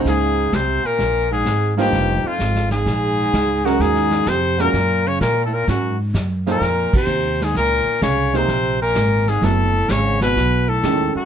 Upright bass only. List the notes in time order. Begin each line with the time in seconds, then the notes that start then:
0.05 C#2
0.52 C2
0.84 muted upright bass stroke
0.99 A#1
1.45 G#1
1.92 F1
2.24 muted upright bass stroke
2.39 G#1
2.86 A#1
3.33 C#2
3.79 D#2
4.26 F2
4.73 F#2
5.20 A#2
5.68 G#2
6.14 F#2
6.61 F2
7.07 D#2
7.55 C#2
7.87 muted upright bass stroke
8.01 C2
8.48 A#1
8.95 G#1
9.42 F#1
9.89 G#1
10.36 B1
10.83 D#2
11.15 muted upright bass stroke